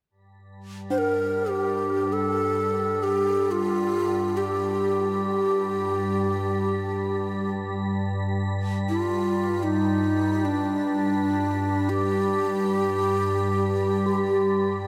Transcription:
0.10 14.87 G2 medium
0.10 14.87 G3 medium
0.90 9.59 D4 soft
0.90 1.00 C5 soft
0.98 1.51 A#4 medium
1.49 2.14 G4 medium
2.13 3.05 A4 medium
3.03 3.53 G4 medium
3.51 4.39 F4 medium
4.37 7.50 G4 medium
8.89 9.65 F4 medium
9.63 10.46 D#4 medium
10.45 11.91 D4 medium
11.89 14.87 G4 medium
14.06 14.87 G4 soft

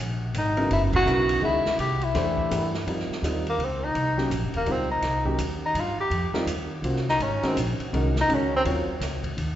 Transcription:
0.00 0.33 A#1 medium
0.34 0.69 G#1 medium
0.34 hi-hat pedal medium
0.34 ride medium
0.38 0.70 D#4 medium
0.57 1.04 C#3 medium
0.57 1.04 F#3 medium
0.57 1.04 B3 medium
0.57 1.04 E4 medium
0.57 1.04 A#4 medium
0.57 ride soft
0.71 1.05 F#1 medium
0.71 0.83 E4 medium
0.71 ride medium
0.93 1.40 F#4 loud
0.93 kick medium
0.93 crash medium
1.06 1.41 B1 medium
1.06 1.41 C#3 medium
1.06 1.41 F#3 medium
1.06 1.41 B3 medium
1.06 1.41 E4 medium
1.06 1.41 A#4 medium
1.06 hi-hat pedal medium
1.29 ride medium
1.41 1.63 C#2 medium
1.41 1.62 D#3 medium
1.41 1.63 G#3 medium
1.41 1.62 C#4 medium
1.41 1.77 E4 medium
1.41 1.63 F#4 medium
1.41 1.63 G#4 medium
1.65 muted upright bass stroke soft
1.65 snare medium
1.78 2.13 C2 medium
1.78 2.06 G4 medium
1.78 ride medium
2.01 2.75 E4 medium
2.01 ride soft
2.14 2.50 E2 medium
2.14 2.49 E3 medium
2.14 2.49 A3 medium
2.14 2.49 D4 medium
2.14 2.49 G4 medium
2.14 2.50 C5 medium
2.14 snare soft
2.14 ride medium
2.38 kick medium
2.50 2.86 G2 medium
2.50 2.71 E3 medium
2.50 2.71 A3 medium
2.50 2.71 D4 medium
2.50 2.71 G4 medium
2.50 2.71 A#4 medium
2.50 hi-hat pedal medium
2.50 ride medium
2.74 snare soft
2.87 3.08 F2 medium
2.87 3.22 G3 medium
2.87 3.22 C4 medium
2.87 3.22 D#4 medium
2.87 3.22 F4 medium
2.87 3.22 A#4 medium
2.87 ride medium
2.99 snare soft
3.09 muted upright bass stroke soft
3.09 snare soft
3.22 3.57 D#2 medium
3.22 3.44 G3 medium
3.22 3.44 C4 medium
3.22 3.44 D#4 medium
3.22 3.44 F4 medium
3.22 3.44 A#4 medium
3.22 hi-hat pedal soft
3.22 ride medium
3.47 3.66 A#3 medium
3.47 ride soft
3.58 3.93 C#2 medium
3.58 ride medium
3.65 3.86 C4 medium
3.84 4.19 D#4 loud
3.95 4.30 C2 medium
3.95 ride medium
4.17 4.29 F#3 medium
4.17 4.30 A#3 medium
4.17 4.30 C#4 medium
4.17 4.30 D#4 medium
4.17 4.30 G4 medium
4.17 snare soft
4.30 4.45 A#1 medium
4.30 hi-hat pedal medium
4.30 ride medium
4.43 4.54 F1 soft
4.54 4.66 D#1 medium
4.54 4.73 A#3 medium
4.54 ride soft
4.66 5.01 C#2 medium
4.66 4.87 G3 medium
4.66 4.87 C4 medium
4.66 4.88 D#4 soft
4.66 4.88 F4 medium
4.66 4.88 A#4 medium
4.66 ride medium
4.72 4.91 C4 medium
4.91 5.24 D#4 medium
5.02 5.38 C2 medium
5.02 snare soft
5.02 ride medium
5.25 5.37 F#3 medium
5.25 5.37 A#3 medium
5.25 5.37 C#4 medium
5.25 5.38 D#4 medium
5.25 5.38 G4 medium
5.25 kick medium
5.38 5.74 D#2 medium
5.38 hi-hat pedal medium
5.38 ride medium
5.66 5.81 D#4 medium
5.74 5.96 G2 medium
5.74 ride medium
5.80 6.00 F4 medium
5.97 6.33 G4 medium
5.97 muted upright bass stroke soft
6.10 6.32 F2 medium
6.10 ride medium
6.33 6.46 G3 medium
6.33 6.46 C4 medium
6.33 6.46 D#4 medium
6.33 6.46 F4 medium
6.33 6.46 A#4 medium
6.33 muted upright bass stroke soft
6.33 snare medium
6.45 6.82 D#2 medium
6.45 hi-hat pedal medium
6.45 ride medium
6.82 7.18 C2 medium
6.82 7.04 A#3 medium
6.82 7.05 C#4 medium
6.82 7.05 F4 soft
6.82 7.05 F#4 medium
6.82 7.05 C5 medium
6.82 ride medium
6.96 snare soft
7.08 7.24 D#4 loud
7.08 snare soft
7.19 7.41 G#1 medium
7.19 7.48 C#4 medium
7.19 ride medium
7.43 7.55 D#3 medium
7.43 7.55 G#3 medium
7.43 7.58 C4 medium
7.43 7.55 C#4 medium
7.43 7.55 F#4 medium
7.43 7.55 A#4 medium
7.43 muted upright bass stroke soft
7.43 snare soft
7.43 ride soft
7.56 7.77 A#1 medium
7.56 hi-hat pedal medium
7.56 ride medium
7.79 muted upright bass stroke soft
7.79 ride soft
7.93 8.28 C2 medium
7.93 8.13 D#3 medium
7.93 8.13 G#3 medium
7.93 8.13 C#4 medium
7.93 8.13 F#4 medium
7.93 8.14 A#4 medium
7.93 ride medium
8.16 snare medium
8.21 8.36 D#4 loud
8.29 8.64 C#2 medium
8.29 8.63 D#3 medium
8.29 8.63 G#3 medium
8.29 8.64 C#4 medium
8.29 8.63 F#4 medium
8.29 8.64 A#4 medium
8.29 ride medium
8.35 8.54 C#4 medium
8.57 8.63 C4 loud
8.65 8.86 D#2 medium
8.65 8.85 F#3 medium
8.65 8.85 C4 medium
8.65 8.85 F4 medium
8.65 8.86 A#4 medium
8.65 8.86 C#5 medium
8.65 ride medium
8.87 muted upright bass stroke soft
9.00 9.35 C#2 medium
9.00 snare soft
9.00 hi-hat pedal medium
9.00 ride medium
9.24 kick medium
9.24 ride soft
9.37 9.55 D#2 medium
9.37 ride medium

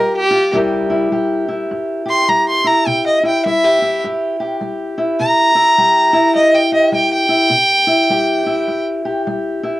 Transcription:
0.00 0.49 G3 medium
0.00 0.29 F4 medium
0.00 0.51 G4 medium
0.00 0.15 A#4 medium
0.16 0.53 G4 loud
0.31 0.51 F4 medium
0.53 1.07 C3 medium
0.53 1.11 G3 medium
0.53 0.89 E4 medium
0.53 1.12 G4 medium
0.53 2.89 A#4 medium
0.90 1.48 E4 medium
1.12 1.65 G3 medium
1.12 2.05 G4 medium
1.48 2.64 E4 medium
1.71 2.24 G2 medium
2.05 3.46 G4 medium
2.05 2.30 C6 medium
2.28 2.82 G3 medium
2.28 2.47 A#5 medium
2.49 2.69 C6 medium
2.64 3.23 E4 medium
2.64 2.89 A#5 medium
2.86 3.40 C3 medium
2.86 3.06 G5 medium
3.06 3.25 D#5 medium
3.23 3.46 E4 medium
3.23 3.45 G5 medium
3.46 3.99 G3 medium
3.46 3.64 E4 medium
3.46 4.01 E5 loud
3.64 4.39 G4 soft
3.82 4.97 E4 medium
4.04 4.57 G2 medium
4.40 5.78 G4 medium
4.61 5.14 G3 medium
4.98 5.55 E4 medium
5.20 5.73 C3 medium
5.20 6.32 A#5 loud
5.55 6.13 E4 medium
5.78 6.31 G3 medium
5.78 6.72 G4 medium
6.13 7.28 E4 medium
6.35 6.89 G2 medium
6.35 6.56 D#5 loud
6.55 6.73 G5 loud
6.72 8.10 G4 medium
6.72 6.93 D#5 medium
6.92 7.46 G3 medium
6.92 7.12 G5 medium
7.13 8.83 G5 loud
7.29 7.49 E4 medium
7.50 8.04 C3 medium
7.87 8.45 E4 medium
8.10 8.63 G3 medium
8.10 9.04 G4 medium
8.46 9.62 E4 medium
8.68 9.21 G2 medium
9.05 9.80 G4 medium
9.27 9.80 G3 medium
9.63 9.80 E4 medium

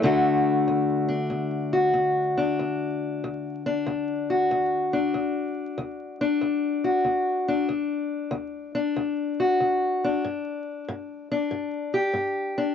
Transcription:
0.02 0.62 D2 medium
0.02 5.14 D3 medium
0.02 3.54 A3 medium
0.02 1.08 D4 medium
0.02 1.73 F#4 medium
0.68 1.27 D2 medium
1.08 2.37 D4 medium
1.30 1.90 D2 medium
1.73 4.30 F#4 medium
1.94 2.54 D2 medium
2.37 3.66 D4 medium
2.59 3.18 D2 medium
3.24 3.83 D2 medium
3.66 4.93 D4 medium
3.86 4.46 D2 medium
4.30 6.84 F#4 soft
4.51 5.10 D2 medium
4.93 6.21 D4 medium
5.14 5.73 D2 medium
5.78 6.37 D2 medium
6.21 7.48 D4 medium
6.41 7.01 D2 medium
6.84 7.67 F#4 soft
7.05 7.64 D2 medium
7.48 8.74 D4 medium
7.69 8.28 D2 medium
8.31 8.91 D2 medium
8.75 10.04 D4 medium
8.96 9.56 D2 medium
9.40 10.22 F#4 soft
9.60 10.20 D2 medium
10.04 11.31 D4 medium
10.24 10.84 G2 medium
10.88 11.48 G2 medium
11.31 12.57 D4 medium
11.51 12.11 G2 medium
11.94 12.75 G4 medium
12.13 12.74 G2 medium
12.58 12.75 D4 medium

